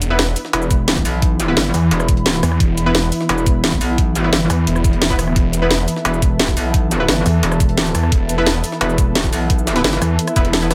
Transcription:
Already playing: E1 E3 B3 E4 B4
0.02 closed hi-hat, shaker
0.08 B3 E4 B4 B5
0.19 snare, closed hi-hat
0.23 E5
0.36 closed hi-hat, open hi-hat, shaker
0.45 snare
0.53 E1 B3 E4 B4, closed hi-hat
0.62 shaker
0.71 kick, closed hi-hat, shaker
0.88 snare, closed hi-hat
0.96 kick, snare, shaker
1.05 B1, open hi-hat, shaker
1.22 kick, closed hi-hat
1.40 closed hi-hat, shaker
1.48 B3 E4 B4
1.57 G1, snare, closed hi-hat
1.74 E2, closed hi-hat, open hi-hat, shaker
1.91 E1, closed hi-hat
2.00 cross-stick, shaker
2.08 kick, closed hi-hat, shaker
2.17 closed hi-hat
2.26 snare, closed hi-hat
2.34 snare, shaker
2.43 E2, cross-stick, closed hi-hat, open hi-hat, shaker
2.52 cross-stick
2.60 E1, kick, closed hi-hat
2.77 closed hi-hat, shaker
2.86 B3 E4 B4
2.95 snare, closed hi-hat
3.12 closed hi-hat, open hi-hat, shaker
3.21 snare
3.29 E1 B3 E4 B4, closed hi-hat
3.38 shaker
3.46 kick, closed hi-hat, shaker
3.64 snare, closed hi-hat
3.72 kick, snare, shaker
3.81 B1, open hi-hat, shaker
3.98 kick, closed hi-hat
4.15 closed hi-hat, shaker
4.24 B3 E4 B4
4.33 G1, snare, closed hi-hat
4.50 E2, cross-stick, closed hi-hat, open hi-hat, shaker
4.67 E1, closed hi-hat
4.76 cross-stick, shaker
4.84 kick, closed hi-hat, shaker
4.93 closed hi-hat
5.02 snare, closed hi-hat
5.10 B3 E4 B4, kick, snare, shaker
5.15 D#1, cross-stick, closed hi-hat, open hi-hat, shaker
5.28 cross-stick
5.36 E1 A4, kick, closed hi-hat
5.53 closed hi-hat, shaker
5.60 B3 E4 B4 A5
5.71 snare, closed hi-hat
5.88 closed hi-hat, open hi-hat, shaker
5.96 snare
6.05 E1 B3 E4 B4, closed hi-hat
6.14 shaker
6.22 kick, closed hi-hat, shaker
6.39 snare, closed hi-hat
6.48 kick, snare, shaker
6.57 B1, open hi-hat, shaker
6.74 kick, closed hi-hat
6.91 closed hi-hat, shaker
7.00 B3 E4 B4
7.08 G1, snare, closed hi-hat
7.26 E2, closed hi-hat, open hi-hat, shaker
7.43 E1, closed hi-hat
7.52 cross-stick, shaker
7.60 kick, closed hi-hat, shaker
7.69 closed hi-hat
7.77 snare, closed hi-hat
7.86 snare, shaker
7.95 E2, cross-stick, closed hi-hat, open hi-hat, shaker
8.03 cross-stick
8.12 E1, kick, closed hi-hat
8.29 closed hi-hat, shaker
8.38 B3 E4 B4
8.46 snare, closed hi-hat
8.64 closed hi-hat, open hi-hat, shaker
8.72 snare
8.81 E1 B3 E4 B4, closed hi-hat
8.90 shaker
8.98 kick, closed hi-hat, shaker
9.15 snare, closed hi-hat
9.24 kick, snare, shaker
9.33 B1, open hi-hat, shaker
9.50 kick, closed hi-hat
9.59 shaker
9.67 snare, closed hi-hat, shaker
9.76 B3 E4 B4, snare, closed hi-hat
9.84 G1, snare, closed hi-hat
9.93 snare, closed hi-hat
10.02 E2, cross-stick, closed hi-hat, open hi-hat, shaker
10.19 closed hi-hat, swell
10.28 cross-stick, closed hi-hat, shaker
10.36 E1 B3 E4 B4, kick, closed hi-hat, shaker
10.45 closed hi-hat
10.53 snare, closed hi-hat
10.62 B3 E4 B4, shaker
10.71 cross-stick, snare, closed hi-hat, open hi-hat, shaker

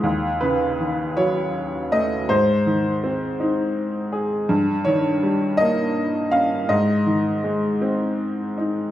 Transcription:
0.03 D#2
0.41 C#3 B4
0.80 D#3
1.17 F#3 C#5
1.92 A3 D#5
2.29 G#2 C5
2.66 D#3
3.04 C4
3.40 D#4
4.12 G#4
4.49 G2
4.85 D#3 C#5
5.23 G3
5.57 A#3 D#5
6.31 C#4 F5
6.69 G#2 D#5
7.06 D#3
7.44 G#3
7.82 C4
8.58 D#4

